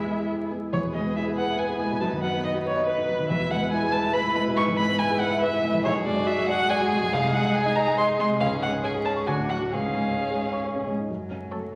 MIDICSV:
0, 0, Header, 1, 6, 480
1, 0, Start_track
1, 0, Tempo, 435730
1, 801, Time_signature, 3, 2, 24, 8
1, 2698, Tempo, 425532
1, 9898, Tempo, 445765
1, 13042, End_track
2, 0, Start_track
2, 0, Title_t, "Violin"
2, 0, Program_c, 0, 40
2, 0, Note_on_c, 0, 76, 61
2, 284, Note_off_c, 0, 76, 0
2, 804, Note_on_c, 0, 73, 72
2, 892, Note_off_c, 0, 73, 0
2, 1040, Note_on_c, 0, 75, 60
2, 1275, Note_off_c, 0, 75, 0
2, 1282, Note_on_c, 0, 76, 75
2, 1370, Note_off_c, 0, 76, 0
2, 1517, Note_on_c, 0, 78, 78
2, 1747, Note_on_c, 0, 80, 77
2, 1764, Note_off_c, 0, 78, 0
2, 1974, Note_off_c, 0, 80, 0
2, 1980, Note_on_c, 0, 80, 75
2, 2208, Note_off_c, 0, 80, 0
2, 2215, Note_on_c, 0, 81, 75
2, 2303, Note_off_c, 0, 81, 0
2, 2449, Note_on_c, 0, 78, 80
2, 2687, Note_off_c, 0, 78, 0
2, 2691, Note_on_c, 0, 75, 77
2, 2782, Note_off_c, 0, 75, 0
2, 2946, Note_on_c, 0, 73, 79
2, 3160, Note_off_c, 0, 73, 0
2, 3167, Note_on_c, 0, 71, 77
2, 3633, Note_off_c, 0, 71, 0
2, 3644, Note_on_c, 0, 76, 88
2, 3890, Note_on_c, 0, 78, 86
2, 3907, Note_off_c, 0, 76, 0
2, 4120, Note_off_c, 0, 78, 0
2, 4127, Note_on_c, 0, 80, 95
2, 4361, Note_on_c, 0, 81, 98
2, 4378, Note_off_c, 0, 80, 0
2, 4599, Note_on_c, 0, 83, 95
2, 4616, Note_off_c, 0, 81, 0
2, 4836, Note_off_c, 0, 83, 0
2, 4843, Note_on_c, 0, 83, 92
2, 4933, Note_off_c, 0, 83, 0
2, 5085, Note_on_c, 0, 85, 104
2, 5175, Note_off_c, 0, 85, 0
2, 5321, Note_on_c, 0, 83, 102
2, 5563, Note_on_c, 0, 80, 102
2, 5580, Note_off_c, 0, 83, 0
2, 5798, Note_on_c, 0, 78, 100
2, 5815, Note_off_c, 0, 80, 0
2, 6038, Note_off_c, 0, 78, 0
2, 6044, Note_on_c, 0, 76, 97
2, 6513, Note_off_c, 0, 76, 0
2, 6525, Note_on_c, 0, 73, 106
2, 6616, Note_off_c, 0, 73, 0
2, 6759, Note_on_c, 0, 74, 86
2, 7006, Note_on_c, 0, 76, 100
2, 7023, Note_off_c, 0, 74, 0
2, 7242, Note_off_c, 0, 76, 0
2, 7249, Note_on_c, 0, 78, 113
2, 7489, Note_on_c, 0, 80, 105
2, 7506, Note_off_c, 0, 78, 0
2, 7720, Note_off_c, 0, 80, 0
2, 7726, Note_on_c, 0, 80, 104
2, 7978, Note_on_c, 0, 77, 106
2, 7995, Note_off_c, 0, 80, 0
2, 8214, Note_on_c, 0, 78, 91
2, 8231, Note_off_c, 0, 77, 0
2, 8452, Note_on_c, 0, 80, 108
2, 8469, Note_off_c, 0, 78, 0
2, 8686, Note_on_c, 0, 82, 97
2, 8703, Note_off_c, 0, 80, 0
2, 8928, Note_off_c, 0, 82, 0
2, 8935, Note_on_c, 0, 84, 96
2, 9025, Note_off_c, 0, 84, 0
2, 9181, Note_on_c, 0, 84, 100
2, 9271, Note_off_c, 0, 84, 0
2, 9418, Note_on_c, 0, 77, 91
2, 9509, Note_off_c, 0, 77, 0
2, 9664, Note_on_c, 0, 78, 88
2, 9754, Note_off_c, 0, 78, 0
2, 9907, Note_on_c, 0, 80, 86
2, 9993, Note_off_c, 0, 80, 0
2, 10133, Note_on_c, 0, 81, 85
2, 10219, Note_off_c, 0, 81, 0
2, 10366, Note_on_c, 0, 80, 75
2, 10452, Note_off_c, 0, 80, 0
2, 10608, Note_on_c, 0, 78, 73
2, 10695, Note_off_c, 0, 78, 0
2, 10855, Note_on_c, 0, 77, 71
2, 11822, Note_off_c, 0, 77, 0
2, 12783, Note_on_c, 0, 73, 43
2, 13042, Note_off_c, 0, 73, 0
2, 13042, End_track
3, 0, Start_track
3, 0, Title_t, "Violin"
3, 0, Program_c, 1, 40
3, 0, Note_on_c, 1, 64, 48
3, 571, Note_off_c, 1, 64, 0
3, 801, Note_on_c, 1, 71, 52
3, 3604, Note_off_c, 1, 71, 0
3, 3648, Note_on_c, 1, 71, 63
3, 6475, Note_off_c, 1, 71, 0
3, 6524, Note_on_c, 1, 68, 83
3, 9371, Note_off_c, 1, 68, 0
3, 9413, Note_on_c, 1, 68, 61
3, 9865, Note_off_c, 1, 68, 0
3, 9895, Note_on_c, 1, 68, 59
3, 10363, Note_on_c, 1, 66, 55
3, 10379, Note_off_c, 1, 68, 0
3, 10857, Note_on_c, 1, 68, 55
3, 10873, Note_off_c, 1, 66, 0
3, 12104, Note_off_c, 1, 68, 0
3, 12791, Note_on_c, 1, 69, 41
3, 13042, Note_off_c, 1, 69, 0
3, 13042, End_track
4, 0, Start_track
4, 0, Title_t, "Viola"
4, 0, Program_c, 2, 41
4, 0, Note_on_c, 2, 56, 47
4, 573, Note_off_c, 2, 56, 0
4, 795, Note_on_c, 2, 68, 52
4, 2178, Note_off_c, 2, 68, 0
4, 2219, Note_on_c, 2, 63, 56
4, 3600, Note_off_c, 2, 63, 0
4, 3644, Note_on_c, 2, 64, 65
4, 6473, Note_off_c, 2, 64, 0
4, 6523, Note_on_c, 2, 66, 78
4, 7928, Note_off_c, 2, 66, 0
4, 7974, Note_on_c, 2, 63, 74
4, 9386, Note_off_c, 2, 63, 0
4, 9411, Note_on_c, 2, 61, 62
4, 9864, Note_off_c, 2, 61, 0
4, 9897, Note_on_c, 2, 61, 61
4, 10367, Note_on_c, 2, 62, 58
4, 10383, Note_off_c, 2, 61, 0
4, 10851, Note_off_c, 2, 62, 0
4, 10858, Note_on_c, 2, 61, 53
4, 12079, Note_off_c, 2, 61, 0
4, 12784, Note_on_c, 2, 66, 46
4, 13042, Note_off_c, 2, 66, 0
4, 13042, End_track
5, 0, Start_track
5, 0, Title_t, "Grand piano"
5, 0, Program_c, 3, 0
5, 0, Control_c, 3, 64, 127
5, 0, Note_on_c, 3, 40, 48
5, 0, Note_on_c, 3, 56, 37
5, 0, Note_on_c, 3, 59, 33
5, 0, Note_on_c, 3, 64, 39
5, 59, Note_off_c, 3, 56, 0
5, 59, Note_on_c, 3, 56, 34
5, 62, Note_off_c, 3, 59, 0
5, 62, Note_on_c, 3, 59, 30
5, 65, Note_off_c, 3, 64, 0
5, 65, Note_on_c, 3, 64, 36
5, 511, Note_off_c, 3, 56, 0
5, 513, Note_off_c, 3, 59, 0
5, 514, Note_off_c, 3, 64, 0
5, 560, Note_on_c, 3, 56, 29
5, 565, Note_on_c, 3, 59, 31
5, 570, Note_on_c, 3, 64, 35
5, 778, Note_off_c, 3, 56, 0
5, 781, Note_off_c, 3, 59, 0
5, 784, Note_off_c, 3, 64, 0
5, 805, Note_off_c, 3, 40, 0
5, 805, Note_on_c, 3, 40, 54
5, 821, Control_c, 3, 64, 0
5, 925, Note_on_c, 3, 47, 41
5, 997, Control_c, 3, 64, 127
5, 1043, Note_on_c, 3, 56, 45
5, 1116, Note_off_c, 3, 47, 0
5, 1160, Note_on_c, 3, 59, 39
5, 1234, Note_off_c, 3, 56, 0
5, 1279, Note_on_c, 3, 64, 47
5, 1352, Note_off_c, 3, 59, 0
5, 1399, Note_on_c, 3, 68, 43
5, 1470, Note_off_c, 3, 64, 0
5, 1522, Note_on_c, 3, 71, 46
5, 1589, Note_off_c, 3, 68, 0
5, 1637, Note_on_c, 3, 76, 46
5, 1709, Note_off_c, 3, 71, 0
5, 1759, Note_on_c, 3, 71, 51
5, 1825, Note_off_c, 3, 76, 0
5, 1874, Note_on_c, 3, 64, 46
5, 1945, Note_off_c, 3, 71, 0
5, 1985, Note_on_c, 3, 56, 43
5, 2061, Note_off_c, 3, 64, 0
5, 2101, Note_on_c, 3, 47, 45
5, 2176, Note_off_c, 3, 56, 0
5, 2184, Note_off_c, 3, 40, 0
5, 2218, Note_on_c, 3, 42, 59
5, 2222, Note_off_c, 3, 47, 0
5, 2248, Control_c, 3, 64, 0
5, 2340, Note_on_c, 3, 51, 44
5, 2435, Control_c, 3, 64, 127
5, 2459, Note_on_c, 3, 54, 45
5, 2530, Note_off_c, 3, 51, 0
5, 2575, Note_on_c, 3, 59, 42
5, 2649, Note_off_c, 3, 54, 0
5, 2690, Note_on_c, 3, 63, 47
5, 2768, Note_off_c, 3, 59, 0
5, 2808, Note_on_c, 3, 66, 50
5, 2887, Note_off_c, 3, 63, 0
5, 2932, Note_on_c, 3, 71, 48
5, 3006, Note_off_c, 3, 66, 0
5, 3056, Note_on_c, 3, 75, 55
5, 3127, Note_off_c, 3, 71, 0
5, 3173, Note_on_c, 3, 71, 56
5, 3247, Note_off_c, 3, 75, 0
5, 3294, Note_on_c, 3, 63, 52
5, 3364, Note_off_c, 3, 71, 0
5, 3416, Note_on_c, 3, 54, 46
5, 3483, Note_off_c, 3, 63, 0
5, 3534, Note_on_c, 3, 51, 46
5, 3602, Note_off_c, 3, 42, 0
5, 3603, Note_off_c, 3, 54, 0
5, 3651, Note_off_c, 3, 51, 0
5, 3659, Note_on_c, 3, 40, 62
5, 3671, Control_c, 3, 64, 0
5, 3765, Note_on_c, 3, 47, 48
5, 3862, Control_c, 3, 64, 127
5, 3891, Note_on_c, 3, 56, 53
5, 3958, Note_off_c, 3, 47, 0
5, 4011, Note_on_c, 3, 59, 50
5, 4081, Note_off_c, 3, 56, 0
5, 4136, Note_on_c, 3, 64, 56
5, 4201, Note_off_c, 3, 59, 0
5, 4250, Note_on_c, 3, 68, 56
5, 4323, Note_off_c, 3, 64, 0
5, 4374, Note_on_c, 3, 71, 56
5, 4439, Note_off_c, 3, 68, 0
5, 4485, Note_on_c, 3, 76, 58
5, 4561, Note_off_c, 3, 71, 0
5, 4600, Note_on_c, 3, 71, 70
5, 4677, Note_off_c, 3, 76, 0
5, 4732, Note_on_c, 3, 64, 58
5, 4795, Note_off_c, 3, 71, 0
5, 4849, Note_on_c, 3, 56, 53
5, 4921, Note_off_c, 3, 64, 0
5, 4969, Note_on_c, 3, 47, 57
5, 5039, Note_off_c, 3, 56, 0
5, 5048, Note_off_c, 3, 40, 0
5, 5087, Note_off_c, 3, 47, 0
5, 5095, Note_on_c, 3, 44, 71
5, 5105, Control_c, 3, 64, 0
5, 5212, Note_on_c, 3, 52, 53
5, 5278, Control_c, 3, 64, 127
5, 5335, Note_on_c, 3, 56, 55
5, 5399, Note_off_c, 3, 52, 0
5, 5454, Note_on_c, 3, 59, 55
5, 5520, Note_off_c, 3, 56, 0
5, 5569, Note_on_c, 3, 64, 62
5, 5639, Note_off_c, 3, 59, 0
5, 5693, Note_on_c, 3, 68, 59
5, 5756, Note_off_c, 3, 64, 0
5, 5813, Note_on_c, 3, 71, 64
5, 5878, Note_off_c, 3, 68, 0
5, 5937, Note_on_c, 3, 76, 64
5, 5998, Note_off_c, 3, 71, 0
5, 6050, Note_on_c, 3, 71, 69
5, 6120, Note_off_c, 3, 76, 0
5, 6170, Note_on_c, 3, 64, 58
5, 6236, Note_off_c, 3, 71, 0
5, 6294, Note_on_c, 3, 56, 58
5, 6357, Note_off_c, 3, 64, 0
5, 6406, Note_on_c, 3, 52, 58
5, 6479, Note_off_c, 3, 56, 0
5, 6482, Note_off_c, 3, 44, 0
5, 6523, Note_off_c, 3, 52, 0
5, 6533, Note_on_c, 3, 35, 75
5, 6544, Control_c, 3, 64, 0
5, 6654, Note_on_c, 3, 42, 55
5, 6740, Control_c, 3, 64, 127
5, 6769, Note_on_c, 3, 56, 62
5, 6840, Note_off_c, 3, 42, 0
5, 6890, Note_on_c, 3, 62, 57
5, 6959, Note_off_c, 3, 56, 0
5, 7007, Note_on_c, 3, 66, 64
5, 7081, Note_off_c, 3, 62, 0
5, 7132, Note_on_c, 3, 68, 61
5, 7200, Note_off_c, 3, 66, 0
5, 7256, Note_on_c, 3, 74, 67
5, 7323, Note_off_c, 3, 68, 0
5, 7374, Note_on_c, 3, 78, 65
5, 7446, Note_off_c, 3, 74, 0
5, 7498, Note_on_c, 3, 74, 71
5, 7565, Note_off_c, 3, 78, 0
5, 7624, Note_on_c, 3, 66, 60
5, 7687, Note_off_c, 3, 74, 0
5, 7738, Note_on_c, 3, 56, 55
5, 7810, Note_off_c, 3, 66, 0
5, 7854, Note_on_c, 3, 42, 57
5, 7927, Note_off_c, 3, 56, 0
5, 7935, Note_off_c, 3, 35, 0
5, 7973, Note_off_c, 3, 42, 0
5, 7975, Note_on_c, 3, 36, 73
5, 7995, Control_c, 3, 64, 0
5, 8092, Note_on_c, 3, 48, 52
5, 8193, Control_c, 3, 64, 127
5, 8209, Note_on_c, 3, 56, 58
5, 8284, Note_off_c, 3, 48, 0
5, 8333, Note_on_c, 3, 63, 53
5, 8403, Note_off_c, 3, 56, 0
5, 8459, Note_on_c, 3, 68, 56
5, 8525, Note_off_c, 3, 63, 0
5, 8572, Note_on_c, 3, 63, 57
5, 8649, Note_off_c, 3, 68, 0
5, 8698, Note_on_c, 3, 75, 59
5, 8766, Note_off_c, 3, 63, 0
5, 8819, Note_on_c, 3, 80, 62
5, 8889, Note_off_c, 3, 75, 0
5, 8936, Note_on_c, 3, 75, 62
5, 9009, Note_off_c, 3, 80, 0
5, 9055, Note_on_c, 3, 68, 55
5, 9127, Note_off_c, 3, 75, 0
5, 9172, Note_on_c, 3, 56, 57
5, 9246, Note_off_c, 3, 68, 0
5, 9293, Note_on_c, 3, 48, 52
5, 9365, Note_off_c, 3, 56, 0
5, 9372, Note_off_c, 3, 36, 0
5, 9412, Note_on_c, 3, 37, 67
5, 9413, Note_off_c, 3, 48, 0
5, 9436, Control_c, 3, 64, 0
5, 9589, Control_c, 3, 64, 127
5, 9654, Note_on_c, 3, 56, 50
5, 9770, Note_on_c, 3, 61, 47
5, 9850, Note_off_c, 3, 56, 0
5, 9899, Note_on_c, 3, 73, 52
5, 9967, Note_off_c, 3, 61, 0
5, 10021, Note_on_c, 3, 68, 53
5, 10087, Note_off_c, 3, 73, 0
5, 10135, Note_on_c, 3, 73, 49
5, 10207, Note_off_c, 3, 68, 0
5, 10254, Note_on_c, 3, 85, 50
5, 10324, Note_off_c, 3, 73, 0
5, 10343, Note_off_c, 3, 37, 0
5, 10372, Note_off_c, 3, 85, 0
5, 10377, Note_on_c, 3, 38, 62
5, 10395, Control_c, 3, 64, 0
5, 10497, Note_on_c, 3, 45, 42
5, 10587, Control_c, 3, 64, 127
5, 10614, Note_on_c, 3, 54, 44
5, 10690, Note_off_c, 3, 45, 0
5, 10740, Note_on_c, 3, 66, 43
5, 10811, Note_off_c, 3, 54, 0
5, 10849, Note_off_c, 3, 38, 0
5, 10863, Note_off_c, 3, 66, 0
5, 10869, Note_on_c, 3, 37, 49
5, 10885, Control_c, 3, 64, 0
5, 10988, Note_on_c, 3, 44, 38
5, 11038, Control_c, 3, 64, 127
5, 11113, Note_on_c, 3, 56, 42
5, 11186, Note_off_c, 3, 44, 0
5, 11238, Note_on_c, 3, 61, 37
5, 11309, Note_off_c, 3, 56, 0
5, 11364, Note_on_c, 3, 73, 41
5, 11432, Note_off_c, 3, 61, 0
5, 11484, Note_on_c, 3, 68, 45
5, 11557, Note_off_c, 3, 73, 0
5, 11605, Note_on_c, 3, 73, 44
5, 11677, Note_off_c, 3, 68, 0
5, 11722, Note_on_c, 3, 85, 44
5, 11798, Note_off_c, 3, 73, 0
5, 11848, Note_on_c, 3, 73, 48
5, 11917, Note_off_c, 3, 85, 0
5, 11970, Note_on_c, 3, 61, 42
5, 12041, Note_off_c, 3, 73, 0
5, 12091, Note_on_c, 3, 56, 40
5, 12163, Note_off_c, 3, 61, 0
5, 12221, Note_on_c, 3, 44, 39
5, 12281, Note_off_c, 3, 56, 0
5, 12287, Note_off_c, 3, 37, 0
5, 12333, Note_off_c, 3, 44, 0
5, 12337, Note_on_c, 3, 42, 41
5, 12348, Control_c, 3, 64, 0
5, 12526, Control_c, 3, 64, 127
5, 12563, Note_on_c, 3, 61, 34
5, 12801, Note_on_c, 3, 57, 32
5, 12932, Note_off_c, 3, 61, 0
5, 13042, Note_off_c, 3, 42, 0
5, 13042, Note_off_c, 3, 57, 0
5, 13042, End_track
6, 0, Start_track
6, 0, Title_t, "Cello"
6, 0, Program_c, 4, 42
6, 0, Note_on_c, 4, 68, 53
6, 526, Note_off_c, 4, 68, 0
6, 805, Note_on_c, 4, 59, 59
6, 3606, Note_off_c, 4, 59, 0
6, 3642, Note_on_c, 4, 56, 65
6, 6472, Note_off_c, 4, 56, 0
6, 6523, Note_on_c, 4, 56, 77
6, 9370, Note_off_c, 4, 56, 0
6, 9408, Note_on_c, 4, 56, 65
6, 9863, Note_off_c, 4, 56, 0
6, 9895, Note_on_c, 4, 56, 65
6, 10369, Note_on_c, 4, 57, 56
6, 10385, Note_off_c, 4, 56, 0
6, 10863, Note_on_c, 4, 56, 58
6, 10879, Note_off_c, 4, 57, 0
6, 12107, Note_off_c, 4, 56, 0
6, 12321, Note_on_c, 4, 54, 58
6, 13028, Note_off_c, 4, 54, 0
6, 13042, End_track
0, 0, End_of_file